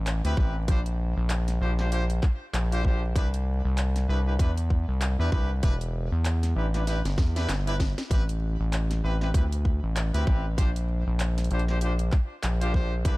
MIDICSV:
0, 0, Header, 1, 4, 480
1, 0, Start_track
1, 0, Tempo, 618557
1, 532, Time_signature, 4, 2, 24, 8
1, 10223, End_track
2, 0, Start_track
2, 0, Title_t, "Horn section"
2, 0, Program_c, 0, 61
2, 189, Note_on_c, 0, 60, 89
2, 189, Note_on_c, 0, 64, 83
2, 189, Note_on_c, 0, 67, 83
2, 190, Note_on_c, 0, 71, 97
2, 275, Note_off_c, 0, 60, 0
2, 275, Note_off_c, 0, 67, 0
2, 276, Note_off_c, 0, 64, 0
2, 276, Note_off_c, 0, 71, 0
2, 289, Note_on_c, 0, 64, 79
2, 289, Note_on_c, 0, 67, 79
2, 290, Note_on_c, 0, 60, 88
2, 291, Note_on_c, 0, 71, 93
2, 428, Note_off_c, 0, 64, 0
2, 428, Note_off_c, 0, 67, 0
2, 429, Note_off_c, 0, 60, 0
2, 429, Note_off_c, 0, 71, 0
2, 531, Note_on_c, 0, 62, 97
2, 531, Note_on_c, 0, 67, 87
2, 531, Note_on_c, 0, 72, 106
2, 532, Note_on_c, 0, 65, 90
2, 617, Note_off_c, 0, 62, 0
2, 617, Note_off_c, 0, 67, 0
2, 617, Note_off_c, 0, 72, 0
2, 618, Note_off_c, 0, 65, 0
2, 1251, Note_on_c, 0, 62, 77
2, 1253, Note_on_c, 0, 72, 86
2, 1254, Note_on_c, 0, 65, 72
2, 1254, Note_on_c, 0, 67, 70
2, 1337, Note_off_c, 0, 62, 0
2, 1338, Note_off_c, 0, 72, 0
2, 1339, Note_off_c, 0, 65, 0
2, 1339, Note_off_c, 0, 67, 0
2, 1388, Note_on_c, 0, 62, 77
2, 1389, Note_on_c, 0, 65, 68
2, 1389, Note_on_c, 0, 67, 70
2, 1389, Note_on_c, 0, 72, 85
2, 1452, Note_off_c, 0, 62, 0
2, 1452, Note_off_c, 0, 65, 0
2, 1452, Note_off_c, 0, 67, 0
2, 1452, Note_off_c, 0, 72, 0
2, 1487, Note_on_c, 0, 67, 77
2, 1489, Note_on_c, 0, 62, 84
2, 1489, Note_on_c, 0, 65, 77
2, 1490, Note_on_c, 0, 72, 96
2, 1575, Note_off_c, 0, 67, 0
2, 1576, Note_off_c, 0, 65, 0
2, 1577, Note_off_c, 0, 62, 0
2, 1577, Note_off_c, 0, 72, 0
2, 2111, Note_on_c, 0, 62, 89
2, 2111, Note_on_c, 0, 72, 102
2, 2113, Note_on_c, 0, 65, 83
2, 2113, Note_on_c, 0, 67, 83
2, 2196, Note_off_c, 0, 62, 0
2, 2197, Note_off_c, 0, 65, 0
2, 2197, Note_off_c, 0, 72, 0
2, 2198, Note_off_c, 0, 67, 0
2, 2211, Note_on_c, 0, 62, 87
2, 2211, Note_on_c, 0, 65, 78
2, 2211, Note_on_c, 0, 72, 96
2, 2212, Note_on_c, 0, 67, 82
2, 2349, Note_off_c, 0, 62, 0
2, 2349, Note_off_c, 0, 65, 0
2, 2349, Note_off_c, 0, 67, 0
2, 2349, Note_off_c, 0, 72, 0
2, 2449, Note_on_c, 0, 67, 91
2, 2450, Note_on_c, 0, 62, 100
2, 2451, Note_on_c, 0, 64, 91
2, 2452, Note_on_c, 0, 71, 109
2, 2537, Note_off_c, 0, 62, 0
2, 2537, Note_off_c, 0, 67, 0
2, 2538, Note_off_c, 0, 64, 0
2, 2538, Note_off_c, 0, 71, 0
2, 3169, Note_on_c, 0, 64, 73
2, 3169, Note_on_c, 0, 67, 71
2, 3170, Note_on_c, 0, 62, 78
2, 3171, Note_on_c, 0, 71, 87
2, 3256, Note_off_c, 0, 64, 0
2, 3256, Note_off_c, 0, 67, 0
2, 3257, Note_off_c, 0, 62, 0
2, 3257, Note_off_c, 0, 71, 0
2, 3309, Note_on_c, 0, 71, 81
2, 3310, Note_on_c, 0, 64, 69
2, 3310, Note_on_c, 0, 67, 68
2, 3311, Note_on_c, 0, 62, 74
2, 3372, Note_off_c, 0, 64, 0
2, 3372, Note_off_c, 0, 71, 0
2, 3373, Note_off_c, 0, 62, 0
2, 3373, Note_off_c, 0, 67, 0
2, 3409, Note_on_c, 0, 62, 86
2, 3409, Note_on_c, 0, 71, 93
2, 3410, Note_on_c, 0, 64, 77
2, 3410, Note_on_c, 0, 67, 77
2, 3496, Note_off_c, 0, 62, 0
2, 3496, Note_off_c, 0, 71, 0
2, 3497, Note_off_c, 0, 64, 0
2, 3497, Note_off_c, 0, 67, 0
2, 4029, Note_on_c, 0, 71, 100
2, 4030, Note_on_c, 0, 64, 85
2, 4030, Note_on_c, 0, 67, 83
2, 4031, Note_on_c, 0, 62, 92
2, 4116, Note_off_c, 0, 62, 0
2, 4116, Note_off_c, 0, 64, 0
2, 4116, Note_off_c, 0, 67, 0
2, 4116, Note_off_c, 0, 71, 0
2, 4128, Note_on_c, 0, 62, 88
2, 4129, Note_on_c, 0, 67, 82
2, 4129, Note_on_c, 0, 71, 95
2, 4131, Note_on_c, 0, 64, 77
2, 4267, Note_off_c, 0, 62, 0
2, 4268, Note_off_c, 0, 67, 0
2, 4268, Note_off_c, 0, 71, 0
2, 4269, Note_off_c, 0, 64, 0
2, 4366, Note_on_c, 0, 64, 90
2, 4367, Note_on_c, 0, 62, 94
2, 4367, Note_on_c, 0, 67, 88
2, 4368, Note_on_c, 0, 71, 108
2, 4455, Note_off_c, 0, 62, 0
2, 4455, Note_off_c, 0, 64, 0
2, 4455, Note_off_c, 0, 67, 0
2, 4456, Note_off_c, 0, 71, 0
2, 5091, Note_on_c, 0, 62, 75
2, 5092, Note_on_c, 0, 64, 73
2, 5092, Note_on_c, 0, 67, 69
2, 5092, Note_on_c, 0, 71, 82
2, 5178, Note_off_c, 0, 62, 0
2, 5178, Note_off_c, 0, 64, 0
2, 5178, Note_off_c, 0, 67, 0
2, 5178, Note_off_c, 0, 71, 0
2, 5233, Note_on_c, 0, 64, 69
2, 5234, Note_on_c, 0, 62, 75
2, 5235, Note_on_c, 0, 67, 71
2, 5235, Note_on_c, 0, 71, 81
2, 5294, Note_off_c, 0, 64, 0
2, 5295, Note_off_c, 0, 62, 0
2, 5295, Note_off_c, 0, 67, 0
2, 5295, Note_off_c, 0, 71, 0
2, 5331, Note_on_c, 0, 62, 86
2, 5332, Note_on_c, 0, 64, 79
2, 5332, Note_on_c, 0, 71, 90
2, 5333, Note_on_c, 0, 67, 78
2, 5417, Note_off_c, 0, 62, 0
2, 5418, Note_off_c, 0, 64, 0
2, 5418, Note_off_c, 0, 67, 0
2, 5418, Note_off_c, 0, 71, 0
2, 5711, Note_on_c, 0, 62, 96
2, 5711, Note_on_c, 0, 67, 87
2, 5713, Note_on_c, 0, 71, 105
2, 5714, Note_on_c, 0, 64, 86
2, 5810, Note_off_c, 0, 62, 0
2, 5810, Note_off_c, 0, 67, 0
2, 5811, Note_off_c, 0, 71, 0
2, 5812, Note_off_c, 0, 64, 0
2, 5951, Note_on_c, 0, 62, 99
2, 5951, Note_on_c, 0, 64, 93
2, 5953, Note_on_c, 0, 67, 90
2, 5953, Note_on_c, 0, 71, 108
2, 6013, Note_off_c, 0, 62, 0
2, 6013, Note_off_c, 0, 64, 0
2, 6014, Note_off_c, 0, 67, 0
2, 6014, Note_off_c, 0, 71, 0
2, 6293, Note_on_c, 0, 60, 92
2, 6293, Note_on_c, 0, 67, 87
2, 6294, Note_on_c, 0, 64, 88
2, 6295, Note_on_c, 0, 71, 103
2, 6378, Note_off_c, 0, 67, 0
2, 6379, Note_off_c, 0, 60, 0
2, 6379, Note_off_c, 0, 64, 0
2, 6379, Note_off_c, 0, 71, 0
2, 7013, Note_on_c, 0, 71, 84
2, 7014, Note_on_c, 0, 64, 71
2, 7015, Note_on_c, 0, 67, 69
2, 7016, Note_on_c, 0, 60, 76
2, 7099, Note_off_c, 0, 64, 0
2, 7099, Note_off_c, 0, 67, 0
2, 7099, Note_off_c, 0, 71, 0
2, 7100, Note_off_c, 0, 60, 0
2, 7152, Note_on_c, 0, 60, 74
2, 7152, Note_on_c, 0, 64, 72
2, 7152, Note_on_c, 0, 71, 85
2, 7153, Note_on_c, 0, 67, 70
2, 7213, Note_off_c, 0, 64, 0
2, 7214, Note_off_c, 0, 60, 0
2, 7214, Note_off_c, 0, 67, 0
2, 7214, Note_off_c, 0, 71, 0
2, 7251, Note_on_c, 0, 71, 94
2, 7252, Note_on_c, 0, 60, 81
2, 7253, Note_on_c, 0, 64, 79
2, 7253, Note_on_c, 0, 67, 77
2, 7337, Note_off_c, 0, 71, 0
2, 7338, Note_off_c, 0, 60, 0
2, 7338, Note_off_c, 0, 64, 0
2, 7338, Note_off_c, 0, 67, 0
2, 7870, Note_on_c, 0, 60, 91
2, 7870, Note_on_c, 0, 64, 81
2, 7871, Note_on_c, 0, 67, 83
2, 7871, Note_on_c, 0, 71, 98
2, 7956, Note_off_c, 0, 60, 0
2, 7956, Note_off_c, 0, 64, 0
2, 7956, Note_off_c, 0, 71, 0
2, 7957, Note_off_c, 0, 67, 0
2, 7970, Note_on_c, 0, 60, 88
2, 7970, Note_on_c, 0, 71, 93
2, 7971, Note_on_c, 0, 64, 78
2, 7971, Note_on_c, 0, 67, 81
2, 8108, Note_off_c, 0, 60, 0
2, 8108, Note_off_c, 0, 71, 0
2, 8109, Note_off_c, 0, 64, 0
2, 8109, Note_off_c, 0, 67, 0
2, 8209, Note_on_c, 0, 62, 99
2, 8209, Note_on_c, 0, 67, 91
2, 8210, Note_on_c, 0, 65, 89
2, 8210, Note_on_c, 0, 72, 105
2, 8296, Note_off_c, 0, 62, 0
2, 8296, Note_off_c, 0, 67, 0
2, 8297, Note_off_c, 0, 65, 0
2, 8297, Note_off_c, 0, 72, 0
2, 8931, Note_on_c, 0, 62, 76
2, 8932, Note_on_c, 0, 65, 71
2, 8933, Note_on_c, 0, 67, 70
2, 8933, Note_on_c, 0, 72, 87
2, 9017, Note_off_c, 0, 62, 0
2, 9018, Note_off_c, 0, 65, 0
2, 9018, Note_off_c, 0, 67, 0
2, 9018, Note_off_c, 0, 72, 0
2, 9070, Note_on_c, 0, 67, 73
2, 9072, Note_on_c, 0, 65, 70
2, 9072, Note_on_c, 0, 72, 86
2, 9073, Note_on_c, 0, 62, 77
2, 9133, Note_off_c, 0, 65, 0
2, 9133, Note_off_c, 0, 67, 0
2, 9134, Note_off_c, 0, 62, 0
2, 9134, Note_off_c, 0, 72, 0
2, 9167, Note_on_c, 0, 72, 95
2, 9168, Note_on_c, 0, 65, 77
2, 9168, Note_on_c, 0, 67, 78
2, 9169, Note_on_c, 0, 62, 86
2, 9255, Note_off_c, 0, 72, 0
2, 9256, Note_off_c, 0, 62, 0
2, 9256, Note_off_c, 0, 65, 0
2, 9256, Note_off_c, 0, 67, 0
2, 9789, Note_on_c, 0, 62, 92
2, 9789, Note_on_c, 0, 65, 81
2, 9789, Note_on_c, 0, 67, 83
2, 9789, Note_on_c, 0, 72, 98
2, 9875, Note_off_c, 0, 65, 0
2, 9875, Note_off_c, 0, 72, 0
2, 9876, Note_off_c, 0, 62, 0
2, 9876, Note_off_c, 0, 67, 0
2, 9891, Note_on_c, 0, 62, 88
2, 9891, Note_on_c, 0, 65, 76
2, 9891, Note_on_c, 0, 67, 80
2, 9891, Note_on_c, 0, 72, 96
2, 10029, Note_off_c, 0, 62, 0
2, 10029, Note_off_c, 0, 65, 0
2, 10029, Note_off_c, 0, 67, 0
2, 10029, Note_off_c, 0, 72, 0
2, 10130, Note_on_c, 0, 64, 87
2, 10130, Note_on_c, 0, 67, 91
2, 10130, Note_on_c, 0, 71, 103
2, 10131, Note_on_c, 0, 62, 95
2, 10217, Note_off_c, 0, 62, 0
2, 10217, Note_off_c, 0, 64, 0
2, 10217, Note_off_c, 0, 67, 0
2, 10217, Note_off_c, 0, 71, 0
2, 10223, End_track
3, 0, Start_track
3, 0, Title_t, "Analog synth bass"
3, 0, Program_c, 1, 38
3, 0, Note_on_c, 1, 33, 96
3, 167, Note_off_c, 1, 33, 0
3, 189, Note_on_c, 1, 38, 99
3, 275, Note_off_c, 1, 38, 0
3, 288, Note_on_c, 1, 33, 99
3, 514, Note_off_c, 1, 33, 0
3, 526, Note_on_c, 1, 34, 94
3, 886, Note_off_c, 1, 34, 0
3, 906, Note_on_c, 1, 34, 101
3, 1233, Note_off_c, 1, 34, 0
3, 1248, Note_on_c, 1, 34, 102
3, 1714, Note_off_c, 1, 34, 0
3, 1967, Note_on_c, 1, 34, 95
3, 2433, Note_off_c, 1, 34, 0
3, 2447, Note_on_c, 1, 36, 98
3, 2806, Note_off_c, 1, 36, 0
3, 2830, Note_on_c, 1, 36, 103
3, 3155, Note_off_c, 1, 36, 0
3, 3172, Note_on_c, 1, 36, 102
3, 3396, Note_off_c, 1, 36, 0
3, 3408, Note_on_c, 1, 40, 100
3, 3767, Note_off_c, 1, 40, 0
3, 3788, Note_on_c, 1, 36, 97
3, 4007, Note_off_c, 1, 36, 0
3, 4029, Note_on_c, 1, 40, 102
3, 4114, Note_off_c, 1, 40, 0
3, 4129, Note_on_c, 1, 36, 101
3, 4354, Note_off_c, 1, 36, 0
3, 4369, Note_on_c, 1, 28, 99
3, 4727, Note_off_c, 1, 28, 0
3, 4748, Note_on_c, 1, 40, 98
3, 5074, Note_off_c, 1, 40, 0
3, 5088, Note_on_c, 1, 33, 99
3, 5447, Note_off_c, 1, 33, 0
3, 5469, Note_on_c, 1, 31, 100
3, 5554, Note_off_c, 1, 31, 0
3, 5569, Note_on_c, 1, 40, 97
3, 5794, Note_off_c, 1, 40, 0
3, 5810, Note_on_c, 1, 31, 98
3, 6168, Note_off_c, 1, 31, 0
3, 6288, Note_on_c, 1, 33, 95
3, 6647, Note_off_c, 1, 33, 0
3, 6672, Note_on_c, 1, 33, 100
3, 6996, Note_off_c, 1, 33, 0
3, 7013, Note_on_c, 1, 33, 100
3, 7236, Note_off_c, 1, 33, 0
3, 7249, Note_on_c, 1, 38, 99
3, 7607, Note_off_c, 1, 38, 0
3, 7629, Note_on_c, 1, 33, 97
3, 7848, Note_off_c, 1, 33, 0
3, 7869, Note_on_c, 1, 38, 100
3, 7955, Note_off_c, 1, 38, 0
3, 7969, Note_on_c, 1, 33, 98
3, 8194, Note_off_c, 1, 33, 0
3, 8208, Note_on_c, 1, 34, 98
3, 8567, Note_off_c, 1, 34, 0
3, 8590, Note_on_c, 1, 34, 99
3, 8915, Note_off_c, 1, 34, 0
3, 8931, Note_on_c, 1, 34, 103
3, 9395, Note_off_c, 1, 34, 0
3, 9650, Note_on_c, 1, 34, 98
3, 10115, Note_off_c, 1, 34, 0
3, 10126, Note_on_c, 1, 36, 96
3, 10223, Note_off_c, 1, 36, 0
3, 10223, End_track
4, 0, Start_track
4, 0, Title_t, "Drums"
4, 52, Note_on_c, 9, 39, 124
4, 52, Note_on_c, 9, 42, 77
4, 130, Note_off_c, 9, 39, 0
4, 130, Note_off_c, 9, 42, 0
4, 192, Note_on_c, 9, 42, 55
4, 269, Note_off_c, 9, 42, 0
4, 289, Note_on_c, 9, 36, 101
4, 366, Note_off_c, 9, 36, 0
4, 528, Note_on_c, 9, 42, 75
4, 529, Note_on_c, 9, 36, 117
4, 606, Note_off_c, 9, 36, 0
4, 606, Note_off_c, 9, 42, 0
4, 668, Note_on_c, 9, 42, 50
4, 745, Note_off_c, 9, 42, 0
4, 1007, Note_on_c, 9, 39, 115
4, 1007, Note_on_c, 9, 42, 76
4, 1084, Note_off_c, 9, 39, 0
4, 1084, Note_off_c, 9, 42, 0
4, 1147, Note_on_c, 9, 40, 40
4, 1147, Note_on_c, 9, 42, 52
4, 1225, Note_off_c, 9, 40, 0
4, 1225, Note_off_c, 9, 42, 0
4, 1388, Note_on_c, 9, 40, 50
4, 1465, Note_off_c, 9, 40, 0
4, 1490, Note_on_c, 9, 42, 76
4, 1567, Note_off_c, 9, 42, 0
4, 1628, Note_on_c, 9, 42, 52
4, 1706, Note_off_c, 9, 42, 0
4, 1728, Note_on_c, 9, 36, 103
4, 1730, Note_on_c, 9, 39, 60
4, 1806, Note_off_c, 9, 36, 0
4, 1808, Note_off_c, 9, 39, 0
4, 1973, Note_on_c, 9, 39, 117
4, 1973, Note_on_c, 9, 42, 76
4, 2050, Note_off_c, 9, 39, 0
4, 2050, Note_off_c, 9, 42, 0
4, 2113, Note_on_c, 9, 42, 54
4, 2191, Note_off_c, 9, 42, 0
4, 2208, Note_on_c, 9, 36, 55
4, 2286, Note_off_c, 9, 36, 0
4, 2448, Note_on_c, 9, 36, 111
4, 2452, Note_on_c, 9, 42, 75
4, 2526, Note_off_c, 9, 36, 0
4, 2530, Note_off_c, 9, 42, 0
4, 2590, Note_on_c, 9, 42, 55
4, 2668, Note_off_c, 9, 42, 0
4, 2931, Note_on_c, 9, 39, 115
4, 2931, Note_on_c, 9, 42, 79
4, 3009, Note_off_c, 9, 39, 0
4, 3009, Note_off_c, 9, 42, 0
4, 3072, Note_on_c, 9, 40, 41
4, 3072, Note_on_c, 9, 42, 53
4, 3149, Note_off_c, 9, 40, 0
4, 3149, Note_off_c, 9, 42, 0
4, 3409, Note_on_c, 9, 36, 97
4, 3412, Note_on_c, 9, 42, 78
4, 3486, Note_off_c, 9, 36, 0
4, 3489, Note_off_c, 9, 42, 0
4, 3550, Note_on_c, 9, 42, 56
4, 3627, Note_off_c, 9, 42, 0
4, 3649, Note_on_c, 9, 36, 57
4, 3727, Note_off_c, 9, 36, 0
4, 3891, Note_on_c, 9, 39, 116
4, 3891, Note_on_c, 9, 42, 79
4, 3968, Note_off_c, 9, 39, 0
4, 3968, Note_off_c, 9, 42, 0
4, 4130, Note_on_c, 9, 36, 97
4, 4207, Note_off_c, 9, 36, 0
4, 4368, Note_on_c, 9, 42, 81
4, 4370, Note_on_c, 9, 36, 121
4, 4446, Note_off_c, 9, 42, 0
4, 4448, Note_off_c, 9, 36, 0
4, 4510, Note_on_c, 9, 42, 54
4, 4587, Note_off_c, 9, 42, 0
4, 4851, Note_on_c, 9, 39, 111
4, 4851, Note_on_c, 9, 42, 81
4, 4929, Note_off_c, 9, 39, 0
4, 4929, Note_off_c, 9, 42, 0
4, 4990, Note_on_c, 9, 40, 41
4, 4990, Note_on_c, 9, 42, 55
4, 5068, Note_off_c, 9, 40, 0
4, 5068, Note_off_c, 9, 42, 0
4, 5232, Note_on_c, 9, 40, 51
4, 5232, Note_on_c, 9, 42, 37
4, 5309, Note_off_c, 9, 40, 0
4, 5309, Note_off_c, 9, 42, 0
4, 5332, Note_on_c, 9, 38, 60
4, 5332, Note_on_c, 9, 42, 83
4, 5410, Note_off_c, 9, 38, 0
4, 5410, Note_off_c, 9, 42, 0
4, 5474, Note_on_c, 9, 38, 60
4, 5474, Note_on_c, 9, 42, 55
4, 5551, Note_off_c, 9, 38, 0
4, 5551, Note_off_c, 9, 42, 0
4, 5570, Note_on_c, 9, 36, 98
4, 5572, Note_on_c, 9, 38, 75
4, 5648, Note_off_c, 9, 36, 0
4, 5650, Note_off_c, 9, 38, 0
4, 5713, Note_on_c, 9, 38, 68
4, 5713, Note_on_c, 9, 42, 37
4, 5791, Note_off_c, 9, 38, 0
4, 5791, Note_off_c, 9, 42, 0
4, 5815, Note_on_c, 9, 38, 88
4, 5815, Note_on_c, 9, 39, 115
4, 5815, Note_on_c, 9, 42, 80
4, 5893, Note_off_c, 9, 38, 0
4, 5893, Note_off_c, 9, 39, 0
4, 5893, Note_off_c, 9, 42, 0
4, 5955, Note_on_c, 9, 42, 57
4, 6033, Note_off_c, 9, 42, 0
4, 6051, Note_on_c, 9, 36, 57
4, 6054, Note_on_c, 9, 38, 98
4, 6128, Note_off_c, 9, 36, 0
4, 6131, Note_off_c, 9, 38, 0
4, 6193, Note_on_c, 9, 38, 90
4, 6193, Note_on_c, 9, 42, 38
4, 6270, Note_off_c, 9, 38, 0
4, 6270, Note_off_c, 9, 42, 0
4, 6291, Note_on_c, 9, 36, 120
4, 6294, Note_on_c, 9, 42, 82
4, 6369, Note_off_c, 9, 36, 0
4, 6372, Note_off_c, 9, 42, 0
4, 6434, Note_on_c, 9, 42, 56
4, 6512, Note_off_c, 9, 42, 0
4, 6774, Note_on_c, 9, 39, 116
4, 6774, Note_on_c, 9, 42, 80
4, 6852, Note_off_c, 9, 39, 0
4, 6852, Note_off_c, 9, 42, 0
4, 6912, Note_on_c, 9, 40, 41
4, 6912, Note_on_c, 9, 42, 56
4, 6989, Note_off_c, 9, 40, 0
4, 6989, Note_off_c, 9, 42, 0
4, 7150, Note_on_c, 9, 40, 51
4, 7227, Note_off_c, 9, 40, 0
4, 7250, Note_on_c, 9, 36, 108
4, 7252, Note_on_c, 9, 42, 86
4, 7328, Note_off_c, 9, 36, 0
4, 7330, Note_off_c, 9, 42, 0
4, 7391, Note_on_c, 9, 42, 59
4, 7469, Note_off_c, 9, 42, 0
4, 7490, Note_on_c, 9, 36, 61
4, 7567, Note_off_c, 9, 36, 0
4, 7732, Note_on_c, 9, 39, 122
4, 7732, Note_on_c, 9, 42, 88
4, 7810, Note_off_c, 9, 39, 0
4, 7810, Note_off_c, 9, 42, 0
4, 7871, Note_on_c, 9, 42, 59
4, 7949, Note_off_c, 9, 42, 0
4, 7969, Note_on_c, 9, 36, 104
4, 8047, Note_off_c, 9, 36, 0
4, 8209, Note_on_c, 9, 36, 121
4, 8211, Note_on_c, 9, 42, 87
4, 8287, Note_off_c, 9, 36, 0
4, 8289, Note_off_c, 9, 42, 0
4, 8351, Note_on_c, 9, 42, 58
4, 8428, Note_off_c, 9, 42, 0
4, 8690, Note_on_c, 9, 39, 121
4, 8690, Note_on_c, 9, 42, 82
4, 8767, Note_off_c, 9, 39, 0
4, 8767, Note_off_c, 9, 42, 0
4, 8830, Note_on_c, 9, 40, 40
4, 8830, Note_on_c, 9, 42, 53
4, 8880, Note_off_c, 9, 42, 0
4, 8880, Note_on_c, 9, 42, 43
4, 8907, Note_off_c, 9, 40, 0
4, 8929, Note_off_c, 9, 42, 0
4, 8929, Note_on_c, 9, 42, 37
4, 8997, Note_off_c, 9, 42, 0
4, 8997, Note_on_c, 9, 42, 30
4, 9067, Note_on_c, 9, 40, 51
4, 9074, Note_off_c, 9, 42, 0
4, 9144, Note_off_c, 9, 40, 0
4, 9166, Note_on_c, 9, 42, 87
4, 9243, Note_off_c, 9, 42, 0
4, 9305, Note_on_c, 9, 42, 58
4, 9382, Note_off_c, 9, 42, 0
4, 9406, Note_on_c, 9, 39, 64
4, 9409, Note_on_c, 9, 36, 110
4, 9484, Note_off_c, 9, 39, 0
4, 9486, Note_off_c, 9, 36, 0
4, 9648, Note_on_c, 9, 39, 124
4, 9648, Note_on_c, 9, 42, 85
4, 9725, Note_off_c, 9, 39, 0
4, 9725, Note_off_c, 9, 42, 0
4, 9789, Note_on_c, 9, 42, 58
4, 9866, Note_off_c, 9, 42, 0
4, 9888, Note_on_c, 9, 36, 61
4, 9966, Note_off_c, 9, 36, 0
4, 10127, Note_on_c, 9, 36, 126
4, 10127, Note_on_c, 9, 42, 81
4, 10205, Note_off_c, 9, 36, 0
4, 10205, Note_off_c, 9, 42, 0
4, 10223, End_track
0, 0, End_of_file